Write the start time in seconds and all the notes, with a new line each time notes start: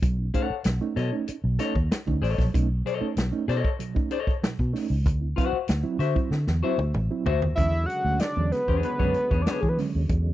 0.02 B1 B2 F#3, kick, closed hi-hat
0.19 C#4 D#4
0.34 A3 C#4 D#4 A4 C#5 F#5, kick, closed hi-hat
0.50 muted fingered electric bass stroke
0.64 B1, snare, closed hi-hat
0.81 A3 C#4 D#4
0.96 B2 F#3 A4 C#5 D#5, snare, closed hi-hat
1.13 A3 C#4 D#4
1.28 muted fingered electric bass stroke, closed hi-hat
1.44 B1 B2 F#3
1.59 A3 C#4 D#4 A4 C#5 D#5, snare, closed hi-hat
1.75 D#2, kick
1.92 snare, closed hi-hat
2.06 D2 A3 C#4 D#4, kick
2.22 A1 A4 C#5 D#5, snare, open hi-hat
2.38 A#1 B2 F#3, kick, snare
2.54 B1 A3 C#4 D#4, kick, closed hi-hat
2.85 B2 F#3 A4 C#5 D#5, closed hi-hat
3.01 A3 C#4 D#4, muted fingered electric bass stroke
3.16 B1 B2 F#3, snare, closed hi-hat
3.32 A3 C#4 D#4
3.48 B2 A4 C#5 D#5, snare, closed hi-hat
3.65 kick
3.79 B2 F#3, closed hi-hat
3.95 A3 C#4 D#4, kick
4.10 C#4 D#4 A4 C#5 D#5, closed hi-hat
4.27 kick
4.42 B2 F#3, snare, closed hi-hat
4.59 B2, kick
4.73 A3 C#4 D#4, snare, open hi-hat
4.89 C#2 C#4 D#4
5.04 D2 D3, kick, closed hi-hat
5.21 C4 E4
5.36 F#3 C4 E4 F#4 C5 F#5, kick, closed hi-hat
5.53 muted fingered electric bass stroke
5.68 D2, snare, closed hi-hat
5.83 F#3 C4 E4
5.99 D3 F#4 C5 E5, snare, closed hi-hat
6.15 F#3 C4 E4, kick
6.31 D3 C4 E4, snare
6.47 E2 D3, snare
6.63 F#3 C4 E4 F#4 C5 E5
6.78 D2, high tom
6.94 A1, mid tom
7.11 F#3 C4 E4
7.26 D2 F#4 C5 E5, floor tom
7.41 D#2 D3, floor tom
7.55 E2 C#3 D3 F#3 G#3 C#4 E5, kick, closed hi-hat
7.86 F#5, closed hi-hat
8.05 D2 D3 F#3 G#3 C#4
8.19 D5, muted fingered electric bass stroke, snare, closed hi-hat
8.37 E2 D3 F#3 G#3 C#4
8.52 G#3 C#4 B4, snare, closed hi-hat
8.68 E2 D4 G#4 C#5, kick
8.83 B4, closed hi-hat
8.99 F#2 D3 F#3 G#3 C#4 D4 G#4 C#5, kick
9.14 closed hi-hat
9.31 E2 D4 G#4 C#5, kick
9.42 D5
9.46 D4 G#4 C#5, snare, closed hi-hat
9.51 B4
9.60 E3 G#4, kick
9.69 B4
9.78 D3 F#3 G#3 C#4, snare, open hi-hat
9.94 D#2 G#3 C#4
10.09 E2, kick, closed hi-hat
10.26 G#3 C#4